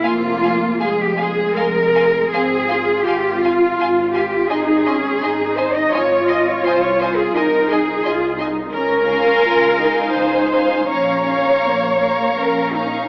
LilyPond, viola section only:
\new Staff \with { instrumentName = "Viola section" } { \time 3/4 \key f \minor \tempo 4 = 83 bes4 aes2 | c'8 f'2~ f'8 | ees'8 des'8 ees'4 f'4~ | f'4 ees'4 f'8 ees'8 |
des'4 f'8 ees'4. | des'4 bes4 des'4 | }